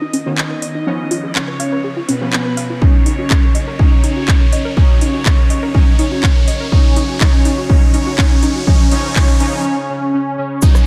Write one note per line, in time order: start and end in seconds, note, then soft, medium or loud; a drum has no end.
0.00 0.23 D#3 medium
0.00 0.23 B3 medium
0.00 0.23 C#4 medium
0.00 0.28 D#4 loud
0.00 0.05 D#4 loud
0.00 0.28 D#5 loud
0.00 riser medium
0.13 0.22 F#1 medium
0.13 0.19 C#4 loud
0.13 open hi-hat loud
0.26 0.34 B1 medium
0.26 0.84 D#3 medium
0.26 0.84 B3 medium
0.26 0.84 C#4 medium
0.26 0.34 F#4 medium
0.38 0.41 C#4 medium
0.38 1.37 D#4 loud
0.38 1.35 D#5 medium
0.38 clap loud
0.50 0.55 B4 medium
0.62 0.70 B1 medium
0.62 0.70 D#5 loud
0.62 open hi-hat loud
0.75 0.82 B1 medium
0.75 0.82 D#4 medium
0.87 2.18 F3 medium
0.87 2.18 B3 medium
0.87 0.92 C#4 medium
0.87 2.18 C#4 medium
1.11 1.19 C#2 medium
1.11 1.16 F4 loud
1.11 open hi-hat loud
1.23 1.31 C#2 medium
1.23 1.31 G#4 medium
1.35 1.39 C#4 medium
1.35 1.99 C#4 loud
1.35 1.99 C#5 loud
1.35 clap loud
1.48 1.56 G#1 medium
1.48 1.53 B4 medium
1.60 1.68 C#2 medium
1.60 1.68 F5 loud
1.60 open hi-hat loud
1.72 1.80 C#2 medium
1.72 1.80 B4 loud
1.84 1.92 G#4 loud
1.97 2.00 F4 loud
2.08 2.17 G#1 loud
2.08 2.81 B3 loud
2.08 2.14 C#4 loud
2.08 2.82 B4 medium
2.08 open hi-hat loud
2.21 2.29 C#2 medium
2.21 2.79 F3 medium
2.21 2.79 B3 medium
2.21 2.79 C#4 medium
2.21 2.29 G#4 medium
2.33 2.36 C#4 medium
2.33 clap loud
2.45 2.50 B4 medium
2.57 2.65 C#2 medium
2.57 2.65 F5 loud
2.57 open hi-hat loud
2.70 2.78 C#2 medium
2.70 2.77 F4 medium
2.82 3.77 F#3 medium
2.82 2.87 C#4 medium
2.82 3.77 C#4 medium
2.82 3.77 C#4 loud
2.82 3.77 D#4 medium
2.82 3.77 C#5 medium
2.82 kick loud
3.06 3.14 D#2 medium
3.06 3.11 D#4 medium
3.06 open hi-hat loud
3.19 3.26 D#2 medium
3.19 3.26 F#4 medium
3.30 3.34 C#4 medium
3.30 kick loud
3.30 clap loud
3.43 3.48 A#4 medium
3.55 3.63 D#2 medium
3.55 3.63 D#5 medium
3.55 open hi-hat loud
3.67 3.75 D#2 medium
3.67 3.75 A#4 medium
3.79 4.75 F#3 medium
3.79 3.85 C#4 medium
3.79 4.75 C#4 medium
3.79 4.75 C#4 loud
3.79 4.75 D#4 medium
3.79 4.75 C#5 loud
3.79 kick loud
4.04 4.09 D#4 loud
4.04 open hi-hat loud
4.16 4.24 D#2 medium
4.16 4.24 F#4 medium
4.28 4.31 C#4 medium
4.28 kick loud
4.28 clap loud
4.41 4.46 A#4 medium
4.52 4.61 D#2 medium
4.52 4.61 D#5 medium
4.52 open hi-hat loud
4.65 4.73 D#2 medium
4.65 4.73 A#4 medium
4.77 5.73 F#3 medium
4.77 5.73 C#4 loud
4.77 4.82 C#4 medium
4.77 5.73 C#4 medium
4.77 5.73 D#4 medium
4.77 5.73 C#5 loud
4.77 kick loud
5.01 5.09 D#2 medium
5.01 5.07 D#4 loud
5.01 open hi-hat loud
5.14 5.21 D#2 medium
5.14 5.21 F#4 medium
5.26 5.29 C#4 medium
5.26 kick loud
5.26 clap loud
5.38 5.43 A#4 medium
5.50 5.58 D#2 medium
5.50 5.58 D#5 loud
5.50 open hi-hat loud
5.63 5.70 D#2 medium
5.63 5.70 A#4 loud
5.74 6.70 F#3 medium
5.74 6.70 C#4 loud
5.74 6.70 C#4 medium
5.74 5.80 C#4 medium
5.74 6.70 D#4 medium
5.74 6.70 C#5 loud
5.74 kick loud
5.99 6.07 D#1 medium
5.99 6.04 D#4 loud
5.99 open hi-hat loud
6.12 6.19 D#2 medium
6.12 6.19 F#4 medium
6.23 6.26 C#4 medium
6.23 kick loud
6.23 clap loud
6.36 6.41 A#4 medium
6.48 6.56 D#2 loud
6.48 6.56 D#5 loud
6.48 open hi-hat loud
6.60 6.68 D#2 medium
6.60 6.68 A#4 loud
6.72 7.19 F#3 medium
6.72 7.19 C#4 loud
6.72 6.77 C#4 medium
6.72 7.19 C#4 medium
6.72 7.19 D#4 medium
6.72 7.19 C#5 loud
6.72 kick loud
6.96 7.05 B1 medium
6.96 7.02 D#4 loud
6.96 open hi-hat loud
7.09 7.17 B1 medium
7.09 7.17 F#4 medium
7.21 7.68 F#3 medium
7.21 7.68 C#4 loud
7.21 7.68 C#4 medium
7.21 7.26 C#4 medium
7.21 7.68 D#4 medium
7.21 7.68 C#5 loud
7.21 kick loud
7.21 clap loud
7.45 7.53 B1 medium
7.45 7.51 D#4 loud
7.45 open hi-hat loud
7.58 7.65 B1 medium
7.58 7.65 F#4 medium
7.69 8.16 F#3 medium
7.69 8.16 C#4 loud
7.69 8.16 C#4 medium
7.69 7.75 C#4 medium
7.69 8.16 D#4 medium
7.69 8.16 C#5 loud
7.69 kick loud
7.94 7.99 D#4 loud
7.94 open hi-hat loud
8.07 8.14 B1 medium
8.07 8.14 F#4 medium
8.18 8.65 F#3 medium
8.18 8.65 C#4 loud
8.18 8.65 C#4 medium
8.18 8.24 C#4 medium
8.18 8.65 D#4 medium
8.18 8.65 C#5 loud
8.18 kick loud
8.18 clap loud
8.43 8.51 B1 loud
8.43 8.48 D#4 loud
8.43 open hi-hat loud
8.55 8.63 B1 medium
8.55 8.63 F#4 medium
8.67 8.90 F3 medium
8.67 8.90 C#4 medium
8.67 8.90 C#4 loud
8.67 8.72 C#4 medium
8.67 8.90 D#4 loud
8.67 8.90 C#5 loud
8.67 kick loud
8.91 9.00 C#2 medium
8.91 9.14 F3 medium
8.91 9.14 C#4 medium
8.91 9.14 C#4 loud
8.91 8.97 C#4 medium
8.91 9.14 D#4 medium
8.91 9.14 C#5 loud
8.91 open hi-hat loud
9.04 9.12 C#2 medium
9.16 9.38 F3 medium
9.16 9.38 C#4 medium
9.16 9.38 C#4 loud
9.16 9.21 C#4 medium
9.16 9.38 D#4 medium
9.16 9.38 C#5 loud
9.16 kick loud
9.16 clap loud
9.29 9.36 G#1 medium
9.40 9.48 C#2 loud
9.40 9.63 F3 medium
9.40 9.63 C#4 medium
9.40 9.63 C#4 loud
9.40 9.46 C#4 medium
9.40 9.63 D#4 medium
9.40 9.63 C#5 loud
9.40 open hi-hat loud
9.53 9.61 C#2 medium
9.64 9.87 C#4 loud
9.89 10.12 C#4 loud
10.13 10.36 C#4 loud
10.38 10.60 C#4 loud
10.62 10.87 F#3 medium
10.62 10.68 C#4 medium
10.62 10.87 C#4 medium
10.62 10.87 C#4 loud
10.62 10.87 D#4 loud
10.62 10.87 C#5 loud
10.62 10.68 C#5 medium
10.62 kick loud
10.62 closed hi-hat medium
10.62 downlifter medium
10.62 maracas medium
10.75 cross-stick medium
10.75 closed hi-hat soft
10.75 maracas soft